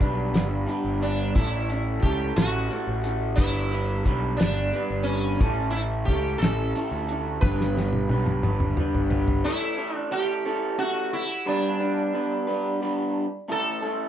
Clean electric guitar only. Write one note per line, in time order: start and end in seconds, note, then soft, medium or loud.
0.00 0.65 G3 medium
0.00 0.35 B3 medium
0.00 0.36 D4 medium
0.00 0.32 B4 medium
0.34 0.68 B3 medium
0.34 0.66 D4 medium
0.34 0.68 B4 medium
0.66 1.33 G3 medium
0.66 1.02 B3 medium
0.66 1.03 D4 medium
0.66 1.00 B4 medium
1.01 1.34 B3 medium
1.01 1.35 D4 medium
1.01 1.33 B4 medium
1.36 2.03 A2 loud
1.36 2.02 A3 loud
1.36 1.71 C#4 medium
1.36 1.70 E4 medium
1.36 1.68 A4 loud
1.69 2.03 C#4 medium
1.69 2.04 E4 medium
1.69 2.05 A4 medium
2.03 2.69 A3 medium
2.03 2.38 C#4 medium
2.03 2.37 E4 medium
2.03 2.35 A4 medium
2.36 2.70 C#4 medium
2.36 2.71 E4 medium
2.36 2.72 A4 medium
2.70 3.36 A3 medium
2.70 3.05 C#4 medium
2.70 3.04 E4 medium
2.70 3.02 A4 medium
3.03 3.37 C#4 medium
3.03 3.37 E4 medium
3.03 3.36 A4 medium
3.37 4.03 G3 medium
3.37 3.72 B3 medium
3.37 3.73 D4 loud
3.37 3.70 B4 medium
3.71 4.06 B3 medium
3.71 4.05 D4 medium
3.71 4.07 B4 medium
4.05 4.71 G3 medium
4.05 4.40 B3 medium
4.05 4.42 D4 medium
4.05 4.38 B4 medium
4.40 4.74 B3 medium
4.40 4.73 D4 medium
4.40 4.75 B4 medium
4.72 5.38 G3 medium
4.72 5.07 B3 medium
4.72 5.08 D4 medium
4.72 5.05 B4 medium
5.06 5.39 B3 medium
5.06 5.40 D4 medium
5.06 5.38 B4 medium
5.40 6.08 A2 loud
5.40 6.06 A3 medium
5.40 5.77 C#4 loud
5.40 5.75 E4 loud
5.40 5.74 A4 loud
5.75 6.08 C#4 medium
5.75 6.09 E4 medium
5.75 6.10 A4 medium
6.07 6.74 A3 medium
6.07 6.44 C#4 medium
6.07 6.42 E4 medium
6.07 6.41 A4 medium
6.42 6.75 C#4 medium
6.42 6.76 E4 medium
6.42 6.77 A4 medium
6.75 7.40 A3 medium
6.75 7.10 C#4 medium
6.75 7.08 E4 medium
6.75 7.07 A4 medium
7.08 7.42 C#4 medium
7.08 7.41 E4 medium
7.08 7.40 A4 medium
7.41 8.07 G3 loud
7.41 7.75 B3 medium
7.41 7.77 D4 loud
7.41 7.73 B4 medium
7.75 8.09 B3 medium
7.75 8.08 D4 medium
7.75 8.10 B4 medium
8.08 8.75 G3 medium
8.08 8.43 B3 medium
8.08 8.45 D4 medium
8.08 8.42 B4 medium
8.43 8.78 B3 medium
8.43 8.76 D4 soft
8.43 8.79 B4 medium
8.76 9.42 G3 medium
8.76 9.11 B3 medium
8.76 9.12 D4 medium
8.76 9.09 B4 medium
9.10 9.43 B3 medium
9.10 9.44 D4 medium
9.10 9.42 B4 medium
9.44 9.77 A3 medium
9.44 9.77 C#4 medium
9.44 9.77 E4 medium
9.44 9.76 A4 loud
9.77 10.10 A3 medium
9.77 10.10 C#4 medium
9.77 10.10 E4 medium
9.77 10.11 A4 medium
10.11 10.45 A3 medium
10.11 10.45 C#4 medium
10.11 10.45 E4 medium
10.11 10.44 A4 medium
10.45 10.77 A3 medium
10.45 10.77 C#4 medium
10.45 10.78 E4 medium
10.45 10.78 A4 medium
10.78 11.22 A3 medium
10.78 11.22 C#4 medium
10.78 11.23 E4 medium
10.78 11.23 A4 medium
11.46 11.80 G3 medium
11.46 11.79 B3 medium
11.46 11.80 D4 medium
11.46 11.79 B4 loud
11.80 12.12 G3 medium
11.80 12.13 B3 medium
11.80 12.13 D4 medium
11.80 12.13 B4 medium
12.13 12.47 G3 medium
12.13 12.47 B3 medium
12.13 12.47 D4 medium
12.13 12.46 B4 medium
12.47 12.80 G3 medium
12.47 12.81 B3 medium
12.47 12.80 D4 medium
12.47 12.81 B4 medium
12.81 13.25 G3 medium
12.81 13.25 B3 medium
12.81 13.25 D4 medium
12.81 13.25 B4 medium
13.48 13.82 A3 medium
13.48 13.82 C#4 medium
13.48 13.81 E4 loud
13.48 13.81 A4 medium
13.82 14.09 A3 medium
13.82 14.09 C#4 medium
13.82 14.09 E4 medium
13.82 14.09 A4 medium